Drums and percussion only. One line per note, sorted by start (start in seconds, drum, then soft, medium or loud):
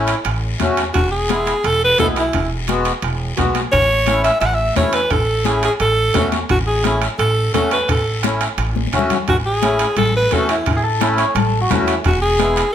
0.07 bombo rim medium
0.07 high timbale medium
0.07 short guiro medium
0.24 bombo rim medium
0.24 high conga soft
0.24 high timbale medium
0.24 long guiro medium
0.60 bombo low medium
0.60 bombo rim medium
0.60 high conga medium
0.60 high timbale medium
0.60 short guiro medium
0.77 bombo rim medium
0.77 high timbale medium
0.77 short guiro medium
0.94 bombo low medium
0.94 bombo rim medium
0.94 high conga soft
0.94 high timbale medium
0.94 long guiro medium
1.28 bombo rim medium
1.28 high conga medium
1.28 high timbale medium
1.28 short guiro medium
1.46 bombo rim medium
1.46 high timbale medium
1.46 short guiro medium
1.63 bombo rim medium
1.63 high conga soft
1.63 high timbale medium
1.63 long guiro medium
1.98 bombo low medium
1.98 bombo rim medium
1.98 high conga medium
1.98 high timbale medium
1.98 low timbale medium
1.98 short guiro medium
2.16 bombo rim medium
2.16 high timbale medium
2.16 short guiro medium
2.33 bombo low medium
2.33 bombo rim medium
2.33 high conga soft
2.33 high timbale medium
2.33 long guiro medium
2.67 bombo rim medium
2.67 high conga medium
2.67 high timbale medium
2.67 short guiro medium
2.85 bombo rim medium
2.85 high timbale medium
2.85 short guiro medium
3.02 bombo rim medium
3.02 high conga soft
3.02 high timbale medium
3.02 long guiro medium
3.37 bombo low medium
3.37 bombo rim medium
3.37 high conga medium
3.37 high timbale medium
3.37 low timbale medium
3.37 short guiro medium
3.55 bombo rim medium
3.55 high conga medium
3.55 high timbale medium
3.55 short guiro medium
3.73 bombo low medium
3.73 bombo rim medium
3.73 high conga soft
3.73 high timbale medium
3.73 long guiro medium
4.06 bombo rim medium
4.06 high conga medium
4.06 high timbale medium
4.06 short guiro medium
4.24 bombo rim medium
4.24 high timbale medium
4.24 short guiro medium
4.42 bombo rim medium
4.42 high conga soft
4.42 high timbale medium
4.42 long guiro medium
4.76 bombo low medium
4.76 bombo rim medium
4.76 high conga medium
4.76 high timbale medium
4.76 low timbale medium
4.76 short guiro medium
4.93 bombo rim medium
4.93 high timbale medium
4.93 short guiro medium
5.10 bombo low medium
5.10 bombo rim medium
5.10 high conga soft
5.10 high timbale medium
5.10 long guiro medium
5.45 bombo rim medium
5.45 high conga medium
5.45 high timbale medium
5.45 short guiro medium
5.63 bombo rim medium
5.63 high timbale medium
5.63 short guiro medium
5.80 bombo rim medium
5.80 high conga soft
5.80 high timbale medium
5.80 long guiro medium
6.14 bombo low medium
6.14 bombo rim medium
6.14 high conga medium
6.14 high timbale medium
6.14 low timbale medium
6.14 short guiro medium
6.32 bombo rim medium
6.32 high conga medium
6.32 high timbale medium
6.32 short guiro medium
6.49 bombo low medium
6.49 bombo rim medium
6.49 high conga soft
6.49 high timbale medium
6.49 long guiro medium
6.84 bombo rim medium
6.84 high conga medium
6.84 high timbale medium
6.84 short guiro medium
7.01 bombo rim medium
7.01 high timbale medium
7.01 short guiro medium
7.19 bombo rim medium
7.19 high conga soft
7.19 high timbale medium
7.19 long guiro medium
7.54 bombo low medium
7.54 bombo rim medium
7.54 high conga medium
7.54 high timbale medium
7.54 low timbale medium
7.54 short guiro medium
7.71 bombo rim medium
7.71 high timbale medium
7.71 short guiro medium
7.88 bombo low medium
7.88 bombo rim medium
7.88 high conga soft
7.88 high timbale medium
7.88 long guiro medium
8.23 bombo rim medium
8.23 high conga medium
8.23 high timbale medium
8.23 short guiro medium
8.41 bombo rim medium
8.41 high timbale medium
8.41 short guiro medium
8.58 bombo rim medium
8.58 high conga soft
8.58 high timbale medium
8.58 long guiro medium
8.76 high conga medium
8.87 high conga medium
8.93 bombo low medium
8.93 bombo rim medium
8.93 high timbale medium
8.93 short guiro medium
8.99 low conga medium
9.10 bombo rim medium
9.10 low conga medium
9.10 high timbale medium
9.10 short guiro medium
9.28 bombo low medium
9.28 bombo rim medium
9.28 high conga soft
9.28 high timbale medium
9.28 long guiro medium
9.62 bombo rim medium
9.62 high conga medium
9.62 high timbale medium
9.62 short guiro medium
9.79 bombo rim medium
9.79 high timbale medium
9.79 short guiro medium
9.96 bombo rim medium
9.96 high conga soft
9.96 low conga medium
9.96 high timbale medium
9.96 long guiro medium
10.31 bombo low medium
10.31 bombo rim medium
10.31 high conga medium
10.31 high timbale medium
10.31 short guiro medium
10.49 bombo rim medium
10.49 high timbale medium
10.49 short guiro medium
10.66 bombo low medium
10.66 bombo rim medium
10.66 high timbale medium
10.66 long guiro medium
11.01 bombo rim medium
11.01 high conga medium
11.01 high timbale medium
11.01 short guiro medium
11.18 bombo rim medium
11.18 high timbale medium
11.18 short guiro medium
11.35 bombo rim medium
11.35 high conga soft
11.35 low conga medium
11.35 high timbale medium
11.35 long guiro medium
11.70 bombo low medium
11.70 bombo rim medium
11.70 high conga medium
11.70 low conga medium
11.70 high timbale medium
11.70 low timbale medium
11.70 short guiro medium
11.87 bombo rim medium
11.87 high timbale medium
11.87 short guiro medium
12.04 bombo low medium
12.04 bombo rim medium
12.04 high conga soft
12.04 high timbale medium
12.04 long guiro medium
12.38 bombo rim medium
12.38 high conga medium
12.38 high timbale medium
12.38 short guiro medium
12.56 bombo rim medium
12.56 high timbale medium
12.56 short guiro medium